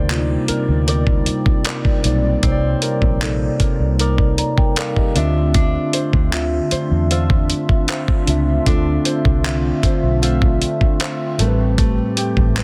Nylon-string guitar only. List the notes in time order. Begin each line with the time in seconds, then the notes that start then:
Already playing: C4 A#4 D#5
0.09 D#4
0.48 A#4
0.87 D#4 A#4 D5
1.65 D#4 A#4 D5
2.43 C4
2.82 A#4
3.21 D#4
3.60 A#4
3.99 D#4 A#4 D5
4.77 D#4 A#4 D5
5.16 D4
5.55 D4
5.94 C5
6.32 F4
6.72 C5
7.11 F4 C5 E5
7.89 F4 C5 E5
8.67 D4
9.05 C5
9.44 F4
9.84 C5
10.22 F4 C5 E5
11.00 F4 C5 E5
11.39 A3
11.78 A3
12.17 G4
12.56 C4